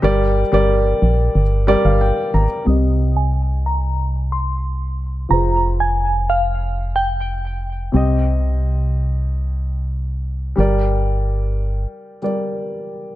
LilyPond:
<<
  \new Staff \with { instrumentName = "Synth bell" } { \time 4/4 \key c \minor \tempo 4 = 91 r1 | ees'''16 r8 aes''16 r8 bes''16 r8. c'''16 r4 r16 | bes''16 r8 aes''16 r8 f''16 r8. g''16 r4 r16 | r1 |
r1 | }
  \new Staff \with { instrumentName = "Grand piano" } { \time 4/4 \key c \minor << { r2 r8 d''16 f''16 g''8 bes''8 | r1 | r1 | r1 |
r1 | } \\ { <g g' bes' d''>8 r16 <g g' bes' d''>4~ <g g' bes' d''>16 r8 <g g' bes'>4~ <g g' bes'>16 r16 | <c c' g' ees''>1 | <f f' aes' c''>1 | <c c' g' ees''>1 |
<g g' bes' d''>2~ <g g' bes' d''>8 <g g' bes' d''>4. | } >> }
  \new Staff \with { instrumentName = "FM bass" } { \clef bass \time 4/4 \key c \minor g,,8. g,,8. bes,,8 g,,8. g,,8 r16 aes,,16 r16 | c,1 | f,,1 | c,1 |
g,,2 r2 | }
>>